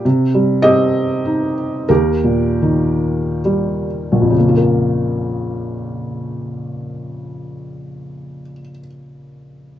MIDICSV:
0, 0, Header, 1, 2, 480
1, 0, Start_track
1, 0, Tempo, 604230
1, 37, Time_signature, 3, 2, 24, 8
1, 998, Tempo, 645161
1, 1478, Tempo, 720288
1, 1958, Tempo, 821918
1, 2438, Tempo, 924499
1, 3398, Tempo, 894188
1, 4838, Tempo, 940439
1, 5766, End_track
2, 0, Start_track
2, 0, Title_t, "Felt piano"
2, 0, Program_c, 0, 0
2, 0, Control_c, 0, 64, 127
2, 41, Note_on_c, 0, 48, 65
2, 47, Control_c, 0, 64, 0
2, 185, Control_c, 0, 64, 127
2, 274, Note_on_c, 0, 55, 48
2, 496, Note_on_c, 0, 75, 98
2, 505, Note_on_c, 0, 67, 68
2, 520, Note_on_c, 0, 60, 62
2, 994, Note_on_c, 0, 63, 51
2, 1207, Note_off_c, 0, 55, 0
2, 1440, Note_off_c, 0, 75, 0
2, 1445, Note_off_c, 0, 67, 0
2, 1449, Note_off_c, 0, 48, 0
2, 1453, Note_off_c, 0, 60, 0
2, 1461, Note_off_c, 0, 63, 0
2, 1467, Note_on_c, 0, 70, 79
2, 1473, Note_on_c, 0, 39, 59
2, 1484, Note_on_c, 0, 67, 62
2, 1485, Control_c, 0, 64, 0
2, 1614, Control_c, 0, 64, 127
2, 1705, Note_on_c, 0, 46, 43
2, 1957, Note_on_c, 0, 51, 48
2, 2410, Note_off_c, 0, 70, 0
2, 2417, Note_off_c, 0, 67, 0
2, 2442, Note_on_c, 0, 55, 49
2, 2646, Note_off_c, 0, 46, 0
2, 2789, Note_on_c, 0, 34, 48
2, 2838, Note_on_c, 0, 41, 45
2, 2884, Note_on_c, 0, 49, 42
2, 2889, Note_off_c, 0, 39, 0
2, 2890, Note_off_c, 0, 51, 0
2, 2899, Note_off_c, 0, 55, 0
2, 2917, Control_c, 0, 64, 0
2, 2929, Note_on_c, 0, 58, 44
2, 2979, Note_on_c, 0, 65, 41
2, 3004, Control_c, 0, 64, 127
2, 3023, Note_on_c, 0, 70, 48
2, 5064, Note_off_c, 0, 34, 0
2, 5112, Note_off_c, 0, 41, 0
2, 5157, Note_off_c, 0, 49, 0
2, 5201, Note_off_c, 0, 58, 0
2, 5250, Note_off_c, 0, 65, 0
2, 5294, Note_off_c, 0, 70, 0
2, 5766, End_track
0, 0, End_of_file